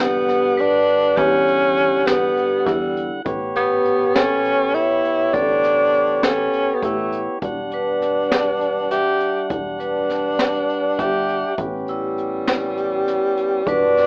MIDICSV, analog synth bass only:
0, 0, Header, 1, 2, 480
1, 0, Start_track
1, 0, Tempo, 595238
1, 945, Time_signature, 7, 3, 24, 8
1, 11344, End_track
2, 0, Start_track
2, 0, Title_t, "Analog synth bass"
2, 0, Program_c, 0, 38
2, 0, Note_on_c, 0, 40, 77
2, 561, Note_off_c, 0, 40, 0
2, 949, Note_on_c, 0, 40, 92
2, 1874, Note_off_c, 0, 40, 0
2, 2149, Note_on_c, 0, 40, 82
2, 2518, Note_off_c, 0, 40, 0
2, 2625, Note_on_c, 0, 33, 74
2, 3921, Note_off_c, 0, 33, 0
2, 4303, Note_on_c, 0, 33, 84
2, 5230, Note_off_c, 0, 33, 0
2, 5503, Note_on_c, 0, 33, 84
2, 5874, Note_off_c, 0, 33, 0
2, 5984, Note_on_c, 0, 28, 81
2, 7280, Note_off_c, 0, 28, 0
2, 7661, Note_on_c, 0, 28, 82
2, 8588, Note_off_c, 0, 28, 0
2, 8860, Note_on_c, 0, 31, 85
2, 9231, Note_off_c, 0, 31, 0
2, 9338, Note_on_c, 0, 33, 83
2, 10635, Note_off_c, 0, 33, 0
2, 11019, Note_on_c, 0, 28, 77
2, 11344, Note_off_c, 0, 28, 0
2, 11344, End_track
0, 0, End_of_file